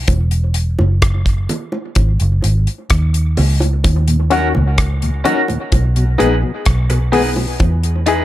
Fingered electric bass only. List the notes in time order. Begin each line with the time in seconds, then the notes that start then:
0.09 E1
0.80 F#1
1.97 G#1
2.21 F#1
2.44 G#1
2.91 D#2
3.38 C#2
3.85 D#2
4.56 C#2
5.73 B1
6.21 A#1
6.67 B1
7.61 E2